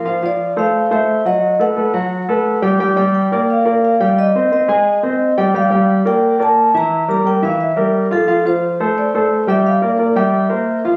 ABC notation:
X:1
M:4/4
L:1/8
Q:1/4=175
K:F
V:1 name="Vibraphone"
c d2 f2 e2 _e- | _e ^f6 z | z2 g2 f2 f2 | _e2 e4- e z |
f2 z g2 a2 b- | b b g f e2 z A- | A c2 z d2 z e | f2 z e4 z |]
V:2 name="Grand piano"
[F,Ff] [F,Ff]2 [A,Ac]2 [A,Ac]2 [_G,_G_g]- | [_G,_G_g] [A,A=B] [A,AB] [^F,^F^f]2 [A,AB]2 [=G,=G=g] | [G,Gg] [G,Gg]2 [B,Bd]2 [B,Bd]2 [G,Gg]- | [G,Gg] [Cc_e] [Cce] [_A,_A_a]2 [Cce]2 [G,Gg] |
[G,Gg] [G,Gg]2 [B,Bd]2 [B,Bd]2 [E,Ee]- | [E,Ee] [G,GB] [G,GB] [E,Ee]2 [G,GB]2 [F,Ff] | [F,Ff] [F,Ff]2 [A,Ac]2 [A,Ac]2 [G,Gg]- | [G,Gg] [B,Bd] [B,Bd] [G,Gg]2 [B,Bc]2 [F,Ff] |]